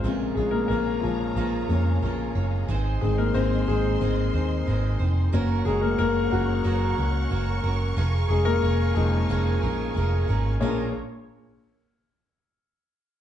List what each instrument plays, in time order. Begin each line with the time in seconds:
0.02 picked electric bass A#1, steel-string acoustic guitar A#2 G#3 A#3 F4 C#5, grand piano C3 C#3 G#3, string section G#4 C#5 F5 A#5
0.35 picked electric bass A#1, grand piano G#3 G#4, steel-string acoustic guitar C#5
0.39 steel-string acoustic guitar G#3 F4
0.51 grand piano A#3 A#4
0.68 picked electric bass A#1, steel-string acoustic guitar G#3 A#3, grand piano A#3 A#4
0.72 steel-string acoustic guitar F4 C#5
1.00 picked electric bass A#1, grand piano F3 F4, steel-string acoustic guitar C#5
1.05 steel-string acoustic guitar G#3 F4
1.36 picked electric bass A#1, steel-string acoustic guitar A#2 G#3 A#3 F4 C#5
1.68 picked electric bass F2, grand piano C#3 G#3 A#3, steel-string acoustic guitar F4 C#5
1.73 steel-string acoustic guitar G#3
2.02 picked electric bass A#1, steel-string acoustic guitar G#3 A#3 F4 C#5
2.35 picked electric bass F#1, steel-string acoustic guitar G#3 F4 C#5
2.68 picked electric bass G#1, steel-string acoustic guitar G#3 C4 D#4 C5, string section C5 D#5 C6
3.01 picked electric bass G#1, grand piano D#3 G#3 C4 G#4, steel-string acoustic guitar C4 D#4 C5
3.18 grand piano A#3 A#4
3.34 picked electric bass G#1, steel-string acoustic guitar G#3 C4 D#4 C5, grand piano C4 C5
3.67 picked electric bass G#1, grand piano G#3 G#4, steel-string acoustic guitar C4 D#4 C5
4.00 picked electric bass G#1, grand piano D#3 G#3 C4, steel-string acoustic guitar G#3 C4 D#4 C5
4.33 picked electric bass D#2, steel-string acoustic guitar C4 D#4 C5
4.66 picked electric bass G#1, steel-string acoustic guitar G#3 C4 D#4 C5
4.99 picked electric bass F1, steel-string acoustic guitar C4 D#4 C5
5.33 picked electric bass F#1, steel-string acoustic guitar F#3 A#3 C#4 F#4 A#4, grand piano F#3 A#3 C#4, string section A#4 C#5 F#5 C#6
5.65 picked electric bass F#1, grand piano G#3 G#4, steel-string acoustic guitar C#4 F#4 A#4
5.81 grand piano A#3 A#4
5.98 picked electric bass F#1, steel-string acoustic guitar A#3 C#4 F#4 A#4, grand piano A#3 A#4
6.31 picked electric bass F#1, grand piano F#3 F#4, steel-string acoustic guitar C#4 F#4 A#4
6.64 picked electric bass F#1, steel-string acoustic guitar F#3 A#3 C#4 F#4 A#4
6.97 picked electric bass C#2, steel-string acoustic guitar C#4 F#4 A#4
7.30 picked electric bass F#1, steel-string acoustic guitar A#3 C#4 F#4 A#4
7.64 picked electric bass F#1, steel-string acoustic guitar C#4 F#4 A#4
7.96 picked electric bass F1, steel-string acoustic guitar F2 F3 G#3 C#4 G#4 A#4, string section F5 G#5
8.29 picked electric bass F1, grand piano G#3 G#4, steel-string acoustic guitar C#4 G#4 A#4
8.33 steel-string acoustic guitar G#3
8.45 grand piano A#3 A#4
8.62 picked electric bass F1, steel-string acoustic guitar G#3 C#4 G#4 A#4
8.95 picked electric bass F1, grand piano F3 G#3 A#3 D#4 G#4, steel-string acoustic guitar C#4 G#4 A#4
8.99 steel-string acoustic guitar G#3
9.29 picked electric bass F1, steel-string acoustic guitar F2 F3 G#3 C#4 G#4 A#4
9.62 picked electric bass A#1, steel-string acoustic guitar G#3 C#4 G#4 A#4
9.95 picked electric bass F1, steel-string acoustic guitar G#3 C#4 G#4 A#4
10.28 picked electric bass G#1, steel-string acoustic guitar G#3 C#4 G#4 A#4
10.60 grand piano A#1 A#3 G#4 C#5, picked electric bass A#1, steel-string acoustic guitar A#2 G#3 C#4 F4 A#4, string section A#3 F4 G#4 A#4 C#5